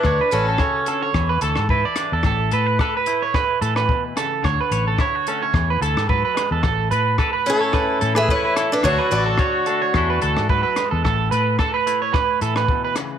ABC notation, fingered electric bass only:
X:1
M:4/4
L:1/16
Q:"Swing 16ths" 1/4=109
K:A
V:1 name="Fingered electric bass" clef=bass
D,, z A,,,2 z4 E,,2 D,, G,,2 z2 E,, | A,,,2 A,,2 z6 A,,2 z4 | D,, z A,,,2 z4 E,,2 D,, G,,2 z2 E,, | A,,,2 A,,2 z6 A,,2 z4 |
D,, z A,,,2 z4 E,,2 D,, G,,2 z2 E,, | A,,,2 A,,2 z6 A,,2 z4 |]